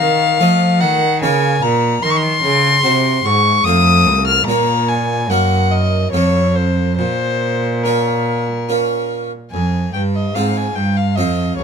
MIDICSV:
0, 0, Header, 1, 4, 480
1, 0, Start_track
1, 0, Key_signature, -5, "minor"
1, 0, Tempo, 816327
1, 1195, Time_signature, 3, 2, 24, 8
1, 3117, Tempo, 845070
1, 5517, Tempo, 826446
1, 6742, End_track
2, 0, Start_track
2, 0, Title_t, "Violin"
2, 0, Program_c, 0, 40
2, 0, Note_on_c, 0, 77, 98
2, 476, Note_on_c, 0, 78, 88
2, 485, Note_off_c, 0, 77, 0
2, 714, Note_off_c, 0, 78, 0
2, 717, Note_on_c, 0, 80, 91
2, 957, Note_on_c, 0, 82, 85
2, 965, Note_off_c, 0, 80, 0
2, 1194, Note_on_c, 0, 84, 96
2, 1202, Note_off_c, 0, 82, 0
2, 1237, Note_on_c, 0, 85, 86
2, 1246, Note_off_c, 0, 84, 0
2, 1273, Note_on_c, 0, 84, 98
2, 1281, Note_off_c, 0, 85, 0
2, 1915, Note_on_c, 0, 85, 89
2, 1923, Note_off_c, 0, 84, 0
2, 2147, Note_on_c, 0, 87, 95
2, 2156, Note_off_c, 0, 85, 0
2, 2509, Note_off_c, 0, 87, 0
2, 2513, Note_on_c, 0, 89, 89
2, 2625, Note_off_c, 0, 89, 0
2, 2628, Note_on_c, 0, 82, 93
2, 2875, Note_on_c, 0, 80, 80
2, 2884, Note_off_c, 0, 82, 0
2, 3119, Note_on_c, 0, 78, 74
2, 3128, Note_off_c, 0, 80, 0
2, 3353, Note_on_c, 0, 75, 75
2, 3361, Note_off_c, 0, 78, 0
2, 3582, Note_off_c, 0, 75, 0
2, 3585, Note_on_c, 0, 73, 78
2, 3828, Note_on_c, 0, 72, 71
2, 3837, Note_off_c, 0, 73, 0
2, 4063, Note_off_c, 0, 72, 0
2, 4066, Note_on_c, 0, 72, 88
2, 4559, Note_on_c, 0, 70, 65
2, 4568, Note_off_c, 0, 72, 0
2, 5279, Note_off_c, 0, 70, 0
2, 5511, Note_on_c, 0, 80, 60
2, 5738, Note_off_c, 0, 80, 0
2, 5754, Note_on_c, 0, 79, 54
2, 5801, Note_off_c, 0, 79, 0
2, 5882, Note_on_c, 0, 75, 58
2, 5993, Note_on_c, 0, 77, 56
2, 6002, Note_off_c, 0, 75, 0
2, 6125, Note_on_c, 0, 80, 52
2, 6133, Note_off_c, 0, 77, 0
2, 6231, Note_on_c, 0, 79, 58
2, 6240, Note_off_c, 0, 80, 0
2, 6357, Note_on_c, 0, 77, 58
2, 6366, Note_off_c, 0, 79, 0
2, 6467, Note_on_c, 0, 75, 61
2, 6476, Note_off_c, 0, 77, 0
2, 6702, Note_off_c, 0, 75, 0
2, 6706, Note_on_c, 0, 73, 54
2, 6742, Note_off_c, 0, 73, 0
2, 6742, End_track
3, 0, Start_track
3, 0, Title_t, "Harpsichord"
3, 0, Program_c, 1, 6
3, 2, Note_on_c, 1, 51, 55
3, 216, Note_off_c, 1, 51, 0
3, 234, Note_on_c, 1, 53, 53
3, 235, Note_on_c, 1, 57, 43
3, 239, Note_on_c, 1, 65, 43
3, 240, Note_on_c, 1, 75, 47
3, 452, Note_off_c, 1, 53, 0
3, 477, Note_on_c, 1, 51, 53
3, 581, Note_off_c, 1, 57, 0
3, 584, Note_off_c, 1, 65, 0
3, 584, Note_off_c, 1, 75, 0
3, 693, Note_off_c, 1, 51, 0
3, 721, Note_on_c, 1, 58, 42
3, 722, Note_on_c, 1, 49, 52
3, 725, Note_on_c, 1, 65, 43
3, 726, Note_on_c, 1, 73, 45
3, 935, Note_off_c, 1, 49, 0
3, 956, Note_on_c, 1, 46, 55
3, 1172, Note_off_c, 1, 46, 0
3, 1174, Note_off_c, 1, 58, 0
3, 1176, Note_off_c, 1, 65, 0
3, 1176, Note_off_c, 1, 73, 0
3, 1195, Note_on_c, 1, 51, 50
3, 1410, Note_off_c, 1, 51, 0
3, 1430, Note_on_c, 1, 49, 51
3, 1647, Note_off_c, 1, 49, 0
3, 1665, Note_on_c, 1, 48, 51
3, 1666, Note_on_c, 1, 66, 42
3, 1671, Note_on_c, 1, 72, 44
3, 1884, Note_off_c, 1, 48, 0
3, 1912, Note_on_c, 1, 44, 50
3, 2014, Note_off_c, 1, 66, 0
3, 2017, Note_off_c, 1, 72, 0
3, 2128, Note_off_c, 1, 44, 0
3, 2152, Note_on_c, 1, 57, 39
3, 2154, Note_on_c, 1, 41, 48
3, 2155, Note_on_c, 1, 65, 42
3, 2159, Note_on_c, 1, 72, 41
3, 2370, Note_off_c, 1, 41, 0
3, 2394, Note_on_c, 1, 36, 53
3, 2611, Note_off_c, 1, 36, 0
3, 2611, Note_off_c, 1, 57, 0
3, 2612, Note_off_c, 1, 65, 0
3, 2615, Note_off_c, 1, 72, 0
3, 2632, Note_on_c, 1, 46, 52
3, 2635, Note_on_c, 1, 58, 42
3, 2638, Note_on_c, 1, 65, 40
3, 2642, Note_on_c, 1, 73, 41
3, 3094, Note_off_c, 1, 46, 0
3, 3095, Note_off_c, 1, 58, 0
3, 3097, Note_off_c, 1, 65, 0
3, 3098, Note_off_c, 1, 73, 0
3, 3116, Note_on_c, 1, 58, 41
3, 3117, Note_on_c, 1, 42, 50
3, 3121, Note_on_c, 1, 63, 39
3, 3125, Note_on_c, 1, 70, 41
3, 3569, Note_off_c, 1, 42, 0
3, 3569, Note_off_c, 1, 58, 0
3, 3571, Note_off_c, 1, 63, 0
3, 3573, Note_off_c, 1, 70, 0
3, 3589, Note_on_c, 1, 41, 45
3, 3591, Note_on_c, 1, 60, 37
3, 3594, Note_on_c, 1, 65, 39
3, 3596, Note_on_c, 1, 69, 35
3, 4050, Note_off_c, 1, 41, 0
3, 4051, Note_off_c, 1, 60, 0
3, 4052, Note_off_c, 1, 65, 0
3, 4053, Note_off_c, 1, 69, 0
3, 4076, Note_on_c, 1, 46, 44
3, 4564, Note_on_c, 1, 61, 38
3, 4568, Note_on_c, 1, 65, 39
3, 4570, Note_on_c, 1, 70, 41
3, 4908, Note_off_c, 1, 61, 0
3, 4910, Note_off_c, 1, 65, 0
3, 4911, Note_off_c, 1, 70, 0
3, 5041, Note_on_c, 1, 61, 34
3, 5044, Note_on_c, 1, 65, 35
3, 5046, Note_on_c, 1, 70, 40
3, 5381, Note_off_c, 1, 46, 0
3, 5385, Note_off_c, 1, 61, 0
3, 5388, Note_off_c, 1, 65, 0
3, 5389, Note_off_c, 1, 70, 0
3, 5524, Note_on_c, 1, 41, 36
3, 5739, Note_off_c, 1, 41, 0
3, 5761, Note_on_c, 1, 43, 35
3, 5976, Note_off_c, 1, 43, 0
3, 5997, Note_on_c, 1, 44, 33
3, 5999, Note_on_c, 1, 60, 28
3, 6000, Note_on_c, 1, 65, 30
3, 6002, Note_on_c, 1, 72, 31
3, 6171, Note_off_c, 1, 60, 0
3, 6214, Note_off_c, 1, 44, 0
3, 6235, Note_on_c, 1, 43, 36
3, 6344, Note_off_c, 1, 65, 0
3, 6346, Note_off_c, 1, 72, 0
3, 6453, Note_off_c, 1, 43, 0
3, 6475, Note_on_c, 1, 41, 34
3, 6475, Note_on_c, 1, 60, 28
3, 6475, Note_on_c, 1, 65, 28
3, 6481, Note_on_c, 1, 72, 28
3, 6649, Note_off_c, 1, 60, 0
3, 6693, Note_off_c, 1, 41, 0
3, 6717, Note_on_c, 1, 37, 38
3, 6742, Note_off_c, 1, 37, 0
3, 6742, Note_off_c, 1, 65, 0
3, 6742, Note_off_c, 1, 72, 0
3, 6742, End_track
4, 0, Start_track
4, 0, Title_t, "Cello"
4, 0, Program_c, 2, 42
4, 0, Note_on_c, 2, 51, 68
4, 231, Note_on_c, 2, 53, 65
4, 240, Note_off_c, 2, 51, 0
4, 473, Note_on_c, 2, 51, 72
4, 482, Note_off_c, 2, 53, 0
4, 714, Note_on_c, 2, 49, 70
4, 723, Note_off_c, 2, 51, 0
4, 955, Note_off_c, 2, 49, 0
4, 958, Note_on_c, 2, 46, 62
4, 1191, Note_off_c, 2, 46, 0
4, 1198, Note_on_c, 2, 51, 74
4, 1430, Note_off_c, 2, 51, 0
4, 1435, Note_on_c, 2, 49, 68
4, 1668, Note_off_c, 2, 49, 0
4, 1674, Note_on_c, 2, 48, 66
4, 1907, Note_off_c, 2, 48, 0
4, 1910, Note_on_c, 2, 44, 66
4, 2143, Note_off_c, 2, 44, 0
4, 2146, Note_on_c, 2, 41, 71
4, 2388, Note_on_c, 2, 36, 63
4, 2397, Note_off_c, 2, 41, 0
4, 2627, Note_off_c, 2, 36, 0
4, 2630, Note_on_c, 2, 46, 63
4, 3114, Note_on_c, 2, 42, 68
4, 3122, Note_off_c, 2, 46, 0
4, 3584, Note_off_c, 2, 42, 0
4, 3587, Note_on_c, 2, 41, 63
4, 4070, Note_on_c, 2, 46, 60
4, 4079, Note_off_c, 2, 41, 0
4, 5401, Note_off_c, 2, 46, 0
4, 5514, Note_on_c, 2, 41, 47
4, 5740, Note_off_c, 2, 41, 0
4, 5757, Note_on_c, 2, 43, 47
4, 5989, Note_off_c, 2, 43, 0
4, 5992, Note_on_c, 2, 44, 44
4, 6230, Note_off_c, 2, 44, 0
4, 6238, Note_on_c, 2, 43, 44
4, 6476, Note_on_c, 2, 41, 50
4, 6485, Note_off_c, 2, 43, 0
4, 6709, Note_off_c, 2, 41, 0
4, 6712, Note_on_c, 2, 37, 44
4, 6742, Note_off_c, 2, 37, 0
4, 6742, End_track
0, 0, End_of_file